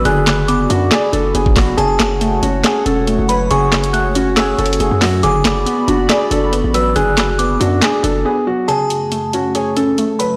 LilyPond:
<<
  \new Staff \with { instrumentName = "Synth bell" } { \time 4/4 \key fis \minor \tempo 4 = 139 fis'''4 d'''4 r2 | a''2.~ a''8 b''8 | cis'''4 fis'''4 e'''2 | d'''2.~ d'''8 e'''8 |
fis'''4 d'''4 r2 | a''2.~ a''8 b''8 | }
  \new Staff \with { instrumentName = "Analog synth pad" } { \time 4/4 \key fis \minor << { <d'' b''>1 | <cis'' fis''>1~ | <cis'' fis''>1 | <d'' b''>1~ |
<d'' b''>1 | <cis a>1 | } \\ { fis'1~ | fis'1~ | fis'1 | fis'1~ |
fis'1 | fis,1 | } >> }
  \new Staff \with { instrumentName = "Felt piano" } { \time 4/4 \key fis \minor gis'4. fis'8 gis'8 a'8 gis'8 fis'8 | gis'4. fis'8 gis'8 a'4 b'8 | gis'4. fis'8 gis'8 a'8 gis'8 fis'8 | gis'4. fis'8 gis'8 a'4 b'8 |
gis'4. fis'8 gis'8 a'8 gis'8 fis'8 | gis'4. fis'8 gis'8 a'4 b'8 | }
  \new Staff \with { instrumentName = "Synth pluck" } { \time 4/4 \key fis \minor <d fis b d' d''>4 b8 d'8 d''8 d'8 b8 fis8 | cis4 a8 cis'8 cis''8 cis'8 a8 fis8 | cis4 a8 cis'8 cis''8 cis'8 a8 fis8 | d4 b8 d'8 d''8 d'8 b8 fis8 |
d4 b8 d'8 d''8 d'8 b8 fis8 | cis4 a8 cis'8 cis''8 cis'8 a8 fis8 | }
  \new Staff \with { instrumentName = "808-style bass" } { \clef bass \time 4/4 \key fis \minor fis,,4. fis,8 r8 fis,,8 fis,,4 | fis,,8 fis,,4 fis,,8 r8 e,,8. fis,,8. | fis,,2~ fis,,8 fis,,8 fis,,16 fis,8. | fis,,8 fis,,8 r8 fis,,8 r8 fis,,8. a,,8. |
fis,,4. fis,8 r8 fis,,8 r4 | r1 | }
  \new DrumStaff \with { instrumentName = "Drums" } \drummode { \time 4/4 hh8 <hc hh sn>8 hh8 hh8 <hc hh sn>8 hh8 hh16 bd16 <hc hho bd sn>8 | hh8 <hc hh sn>8 hh8 hh8 <hc hh sn>8 hh8 hh8 hh8 | hh8 <hc hh sn>16 hh16 hh8 hh8 \tuplet 3/2 { <hc hh sn>16 r16 r16 hh16 hh16 hh16 } hh8 <hc hho sn>8 | hh8 <hc hh sn>8 hh8 hh8 <hc hh sn>8 hh8 hh8 hh8 |
hh8 <hc hh sn>8 hh8 hh8 <hc hh sn>8 hh8 r4 | hh8 hh8 hh8 hh8 hh8 hh8 hh8 hh8 | }
>>